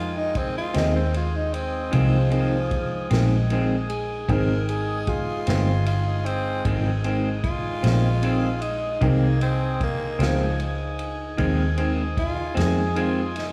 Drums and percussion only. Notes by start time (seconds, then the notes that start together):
0.35 kick, ride
0.74 snare, ride
1.14 ride
1.54 ride
1.93 kick, ride
2.31 ride
2.71 kick, ride
3.11 snare, ride
3.50 ride
3.90 ride
4.29 kick, ride
4.69 ride
5.07 kick, ride
5.47 snare, ride
5.86 ride
6.26 ride
6.65 kick, ride
7.04 ride
7.44 kick, ride
7.84 snare, ride
8.23 ride
8.62 ride
9.01 kick, ride
9.41 ride
9.81 kick, ride
10.20 snare, ride
10.60 ride
10.99 ride
11.38 kick, ride
11.78 ride
12.17 kick, ride
12.57 snare, ride
12.96 ride
13.36 snare, ride